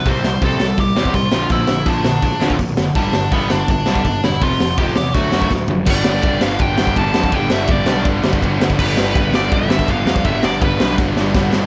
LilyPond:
<<
  \new Staff \with { instrumentName = "Lead electric guitar" } { \time 4/4 \key g \mixolydian \tempo 4 = 165 c''4 a'4 g'4 f'4 | e'4 d'2 r4 | d'4 b8 d'8 d'4. e'8 | f'4 g'8 g'8 fis'4 r4 |
d''4. f''8 g''4 a''4 | g''8 e''8 d''4 r2 | b'4. d''8 e''4 f''4 | e''8 d''8 b'4 r2 | }
  \new Staff \with { instrumentName = "Distorted electric guitar" } { \clef bass \time 4/4 \key g \mixolydian <c g c'>8 <c g>8 <c g c'>8 <c g>8 <c g>8 <c g c'>8 <c g>8 <bes, d f>8 | <bes, d f>8 <bes, d>8 <bes, d f>8 <bes, d>8 <bes, d>8 <bes, d f>8 <bes, d>8 <bes, d>8 | <g, d g>8 <g, d>8 <g, d g>8 <g, d>8 <g, d>8 <g, d g>8 <g, d>8 <g, d>8 | <f, c f>8 <f, c>8 <f, c f>8 <f, c>8 <d fis a>8 <d fis a>8 <d fis>8 <d fis>8 |
<g, d g b d'>2~ <g, d g b d'>8 <g, d g b d'>8 <g, d g b d'>4 | <g, d g b d'>2~ <g, d g b d'>8 <g, d g b d'>8 <g, d g b d'>4 | <g, d g b d'>2~ <g, d g b d'>8 <g, d g b d'>8 <g, d g b d'>4 | <g, d g b d'>2~ <g, d g b d'>8 <g, d g b d'>8 <g, d g b d'>4 | }
  \new Staff \with { instrumentName = "Distorted electric guitar" } { \clef bass \time 4/4 \key g \mixolydian r1 | r1 | r1 | r1 |
<g, d g>4. <g, d g>2~ <g, d g>8 | <g, d g>4. <g, d g>2~ <g, d g>8 | <g, d g>4. <g, d g>2~ <g, d g>8 | <g, d g>4. <g, d g>2~ <g, d g>8 | }
  \new Staff \with { instrumentName = "Overdriven electric guitar" } { \clef bass \time 4/4 \key g \mixolydian <c g c'>8 <c g>8 <c g c'>8 <c g>8 <c g>8 <c g c'>8 <c g>8 <bes, d f>8 | <bes, d f>8 <bes, d>8 <bes, d f>8 <bes, d>8 <bes, d>8 <bes, d f>8 <bes, d>8 <bes, d>8 | <g, d g>8 <g, d>8 <g, d g>8 <g, d>8 <g, d>8 <g, d g>8 <g, d>8 <g, d>8 | <f, c f>8 <f, c>8 <f, c f>8 <f, c>8 <d fis a>8 <d fis a>8 <d fis>8 <d fis>8 |
r1 | r1 | r1 | r1 | }
  \new Staff \with { instrumentName = "Picked electric bass" } { \clef bass \time 4/4 \key g \mixolydian c,8 c,8 c,8 c,8 c,8 e,8 c,8 bes,,8 | bes,,8 bes,,8 bes,,8 bes,,8 bes,,8 d,8 bes,,8 fis,,8 | g,,8 g,,8 g,,8 g,,8 g,,8 b,,8 g,,8 e,,8 | f,,8 f,,8 f,,8 e,8 d,8 fis,8 d,8 fis,,8 |
g,,8 g,,8 g,,8 g,,8 g,,8 g,,8 g,,8 f,8 | g,,8 g,,8 g,,8 b,,8 g,,8 g,,8 g,,8 g,,8 | g,,8 g,,8 g,,8 g,,8 g,,8 g,,8 g,,8 f,8 | g,,8 g,,8 g,,8 b,,8 g,,8 g,,8 g,,8 g,,8 | }
  \new DrumStaff \with { instrumentName = "Drums" } \drummode { \time 4/4 <hho bd>8 sn8 <hho bd>8 sn8 <hho bd>8 sn16 bd16 <hho bd>8 sn8 | <hho bd>8 sn8 <hho bd>8 sn8 <hho bd>8 sn16 bd16 <hho bd>8 sn8 | <hho bd>8 sn8 <hho bd>8 sn8 <hho bd>8 sn16 bd16 <hho bd>8 sn8 | <hho bd>8 sn8 <hho bd>8 sn8 <hho bd>8 sn16 bd16 <bd sn>8 tomfh8 |
<cymc bd>8 sn8 <bd cymr>8 sn8 <bd cymr>8 sn16 bd16 <bd cymr>8 sn16 bd16 | <bd cymr>8 sn8 <bd cymr>8 sn8 <bd cymr>8 sn16 bd16 <bd cymr>8 sn16 bd16 | <cymc bd>8 sn8 <bd cymr>8 sn8 <bd cymr>8 sn16 bd16 <bd cymr>8 sn16 bd16 | <bd cymr>8 sn8 <bd cymr>8 sn8 <bd sn>8 sn8 <bd sn>8 sn8 | }
>>